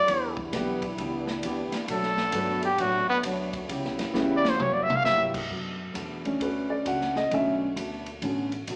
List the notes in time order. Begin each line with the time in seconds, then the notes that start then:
Already playing: D5
0.06 E2 E3 G3 B3 D4 E4 G4, kick, ride
0.37 kick
0.52 B1 E3 G3 B3 D4 E4 G4 B4, kick, snare, hi-hat pedal, ride
0.82 kick, ride
0.98 C#2 E3 B3 D4 G4, kick, ride
1.27 snare
1.43 D2 E3 B3 D4 G4, kick, hi-hat pedal, ride
1.72 muted upright bass stroke, snare, ride
1.87 B1 B2 F#3 A3 B3 D4 F#4, kick, ride
1.91 A4
2.03 snare
2.17 snare
2.32 G1 B2 F#3 A3 B3 D4 F#4 B4, kick, hi-hat pedal, ride
2.62 G4, ride
2.78 A1 B2 F#3 A3 D4 F#4, kick, ride
3.08 B3, muted upright bass stroke
3.23 D2 B2 F#3 A3 D4, kick, hi-hat pedal, ride
3.53 kick, ride
3.68 C#2 C#3 G3 B3 E4 G4, kick, ride
3.85 B1, snare
3.99 G1, snare, ride
4.13 E2 C#3 G3 B3 C#4 E4 G4 B4, snare, hi-hat pedal
4.37 D5
4.45 snare
4.50 C5
4.56 E3 F#3 A#3 E4 F#4, mid tom
4.60 F#2 G4 C#5
4.73 D5
4.83 E5
4.90 muted upright bass stroke, mid tom
4.96 F5
5.04 G2 F#3 A#3 E4 G4 E5, snare, hi-hat pedal
5.34 kick, crash
5.49 F#2 B2 A3 D4 F#4, kick
5.93 E2 B2 A3 D4 F#4, kick, hi-hat pedal, ride
6.25 A3 C#4 D4, ride
6.40 D2 B2 A3 D4 F#4 B4, kick, ride
6.70 D5
6.85 C#2 B2 A3 D4 F#4 F#5, kick, hi-hat pedal, ride
7.01 snare
7.16 D#5, snare
7.30 B1 B2 D3 A3 C#4 D4 F#4 E5, kick, ride
7.76 D2 B2 A3 D4 F#4, kick, hi-hat pedal, ride
8.06 ride
8.22 A1 B2 D3 A3 C#4 D4 F#4, kick, ride
8.52 ride
8.67 B1 B2 A3 D4 F#4, kick, hi-hat pedal, ride